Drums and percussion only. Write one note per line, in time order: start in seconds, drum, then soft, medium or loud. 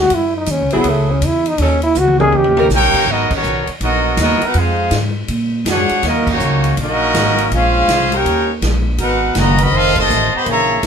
0.10 kick soft
0.10 ride medium
0.46 kick soft
0.46 hi-hat pedal medium
0.46 ride medium
0.70 ride medium
0.84 kick soft
0.84 ride medium
1.22 kick soft
1.22 hi-hat pedal medium
1.22 ride medium
1.46 ride medium
1.58 kick soft
1.58 ride medium
1.82 ride soft
1.95 hi-hat pedal medium
1.95 mid tom medium
2.08 high tom medium
2.20 high tom medium
2.32 mid tom medium
2.44 mid tom medium
2.57 mid tom loud
2.70 snare medium
2.70 hi-hat pedal medium
2.94 kick medium
2.94 crash medium
3.07 kick soft
3.31 kick loud
3.31 crash medium
3.43 hi-hat pedal medium
3.67 ride medium
3.81 kick soft
3.81 ride medium
4.17 kick soft
4.17 snare medium
4.17 hi-hat pedal medium
4.17 ride medium
4.42 ride medium
4.54 kick soft
4.54 ride medium
4.91 kick soft
4.91 snare medium
4.91 hi-hat pedal medium
4.91 ride medium
5.28 kick soft
5.28 ride medium
5.66 kick soft
5.66 snare medium
5.66 hi-hat pedal medium
5.66 ride medium
5.89 ride medium
6.03 kick soft
6.03 snare soft
6.03 ride medium
6.27 kick medium
6.27 crash medium
6.40 hi-hat pedal medium
6.64 ride medium
6.77 kick soft
6.77 ride medium
7.15 kick soft
7.15 snare medium
7.15 hi-hat pedal medium
7.15 ride medium
7.38 ride medium
7.52 kick soft
7.52 ride medium
7.88 kick soft
7.88 snare medium
7.88 hi-hat pedal medium
7.88 ride medium
8.12 ride medium
8.25 kick soft
8.25 ride medium
8.62 kick soft
8.62 snare medium
8.62 hi-hat pedal medium
8.62 ride medium
8.98 kick soft
8.98 ride medium
9.35 kick soft
9.35 snare medium
9.35 hi-hat pedal medium
9.35 ride medium
9.58 ride medium
9.72 kick soft
9.96 kick loud
9.96 crash medium
10.09 hi-hat pedal medium
10.46 kick soft
10.46 ride medium
10.83 kick soft
10.83 snare medium
10.83 hi-hat pedal medium
10.83 ride medium